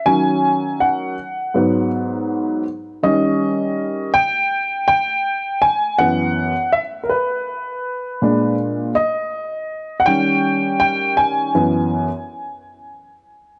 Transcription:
0.06 D#3 F#3 C#4 G#5
0.80 F#5
1.54 G#2 F#3 B3
3.03 D#3 G3 C#4 D#5
4.14 G5
4.88 G5
5.62 G#5
5.99 F#2 E3 B3 F#5
6.73 E5
7.04 A#4
7.09 B4
8.22 A#2 G#3 D4
8.95 D#5
10.00 F#5
10.06 D#3 G3 C#4 G5
10.80 G5
11.17 G#5
11.55 F#2 E3 B3

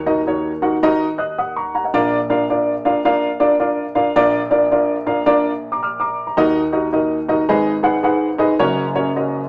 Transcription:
Already playing: D#2 D#3
0.06 D#4 F#4 A#4 D#5
0.27 D#4 F#4 A#4 C#5
0.62 D#4 F#4 A#4 F#5
0.83 D#4 F#4 A#4 D#5
1.18 D#5 D#6 F#6
1.38 F#5 D#6
1.56 A#5 C#6
1.75 F#5 A#5
1.84 D#5 F#5
1.94 A#1 A#2 D4 F4 A#4 D5
2.30 D4 F4 A#4 F5
2.50 D4 F4 A#4 D5
2.85 D4 F4 A#4 F5
3.05 D4 F4 A#4 F5
3.40 D4 F4 A#4 D5
3.60 D4 F4 A#4 D5
3.95 D4 F4 A#4 F5
4.16 A#1 A#2 D4 F4 A#4 D5
4.51 D4 F4 A#4 D5
4.71 D4 F4 A#4 D5
5.06 D4 F4 A#4 F5
5.26 D4 F4 A#4 D5
5.72 A#5 D6
5.83 D6 F6
6.00 A#5 D6
6.27 A#5
6.37 D#2 D#3 D#4 F#4 A#4 D#5
6.72 D#4 F#4 A#4 D#5
6.93 D#4 F#4 A#4 D#5
7.28 D#4 F#4 A#4 D#5
7.49 G#1 G#2 D#4 G#4 B4 D#5
7.83 D#4 G#4 B4 F#5
8.03 D#4 G#4 B4 F#5
8.38 D#4 G#4 B4 D#5
8.59 F#1 F#2 C#4 F#4 A#4 C#5
8.95 C#4 F#4 A#4 C#5
9.16 C#4 F#4 A#4 D#5

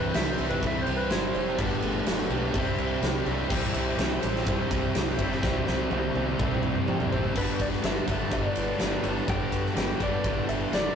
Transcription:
Already playing: C2 C3 E3 G3 C4 E4 C5
0.00 G4 B4
0.06 C4 E4
0.14 C2 C3 G3 C4 E4 G4 E5, snare, crash
0.32 C5
0.38 C2 C3 G3 C4 E4 G4, crash
0.49 C4 E4 G4 B4, kick
0.62 C2 G3, kick, crash
0.67 E5
0.73 C4 E4 G4
0.82 G3 C4 C5
0.87 C2 E4 G4, crash
0.97 B4
1.09 G1 C3 G3 C4 E4 G4 C5, snare, crash
1.34 F1 G3 C4 E4 G4, crash
1.47 C4 E4 G4
1.58 G1 G2 D3 G3 A3 B3 D4 G4 B4, kick, crash
1.82 G1 A3 B3 D4 G4, crash
1.94 A3 B3 D4 G4
2.06 F1 G2 D3 A3 B3 D4 G4, snare, crash
2.29 B1 G2 D3 G3 A3 B3 D4, crash
2.33 D4 G4
2.42 A3 B3 D4 G4
2.53 C2 C3 G3 C4 D4 E4 G4 C5, kick, crash
2.67 D4 E4 G4
2.78 C2 G3 C4 D4 G4, crash
3.00 C2 C3 G3 D4 E4 G4, snare, crash
3.26 C2 C3 G3 C4 D4 E4 G4, crash
3.37 D4 E4 G4
3.49 C2 C3 E3 G3 C4 D4 E4 G4 C5, kick, crash
3.73 C2 G3 C4 D4 E4 G4, ride
3.96 C2 C3 E3 G3 C4 D4 G4, snare, ride
4.01 E4
4.08 G3 C4 D4 G4
4.20 A1 G3 C4 D4 E4, ride
4.24 G4
4.36 snare
4.45 G2 C3 G3 C4 E4, kick, ride
4.57 G3 C4 D4 G4
4.69 C2 C3 G3 C4 E4, kick, ride
4.73 D4 G4
4.95 C2 C3 E3 G3 C4 D4 E4 G4, snare, ride
5.18 G1 C3 E3 G3 C4 D4 E4 G4, kick, ride
5.30 G3 C4 D4 G4, snare
5.42 C2 C3 E3 G3 C4 D4 E4 G4, kick, snare
5.65 C2 G3 C4 D4 E4 G4, snare
5.89 C2 C3 E3 G3 C4 D4 E4 G4, high tom
6.02 G3 C4 D4 G4
6.14 C2 G3 C4 D4 E4 G4, high tom
6.39 C2 C3 G3 C4 E4, kick, mid tom
6.52 G3 C4 D4 G4, mid tom
6.62 C3 G3 C4 E4, mid tom
6.66 D4 G4
6.76 mid tom
6.87 F2 C3 E3 G3 C4 D4 E4 G4, mid tom
7.00 floor tom
7.09 A1 G3 C4 E4, floor tom
7.14 C3 E3 D4 G4
7.24 G3 C4 D4 G4, floor tom
7.35 G1 G2 D3 G3 B3 D4 G4 B4, kick, crash
7.59 G1 G3 B3 D4 G4 D5, kick, ride
7.73 snare
7.81 G1 G2 B3, snare, ride
7.85 D3 G3 D4 G4 E5
8.05 G1 G2 D3 G3, kick, ride
8.10 G2 B3 D4 G4 E5
8.21 G3 B3 D4 G4
8.29 G1 G2 D3 G3 D5, kick, ride
8.34 B3 D4
8.44 G3 B3 D4 G4
8.56 G1, ride
8.79 G1 G2 D3 G3 B3 D4 G4, snare, ride
9.01 G1 G2 D3 G3, ride
9.06 B3 D4 G4
9.17 G3 B3 D4 G4
9.28 G1 G2 D3 G3 B3 D4 G4 G5, kick, ride
9.52 G3 B3 D4 G4, kick, ride
9.66 snare
9.75 G1 G2 D3 G3 B3 D4 G4 G5, snare, ride
9.99 G1 G2 D3 G3 B3 D4 G4 D5, kick, ride
10.11 G3 B3 D4 G4
10.24 G1 G2 D3 G3 B3 D4, kick, ride
10.35 G3 B3 D4 G4
10.49 G1 E5, ride
10.71 F1 G2 D3 G3 B3 D4 G4 D5, snare, ride

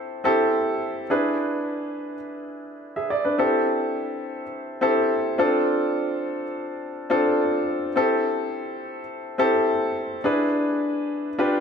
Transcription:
Already playing: C4 E4 G4 A4
0.24 C4 E4 G4 A4
1.10 D4 E4 G#4 B4
2.96 G#4 E5
3.10 D5
3.25 D4 B4
3.38 C4 E4 G4 A4
4.81 C4 E4 G4 A4
5.38 C4 D4 F4 A4
7.10 C4 D4 F4 A4
7.96 C4 E4 G4 A4
9.38 C4 E4 G4 A4
10.24 D4 E4 G#4 B4
11.39 D4 F4 G4 B4

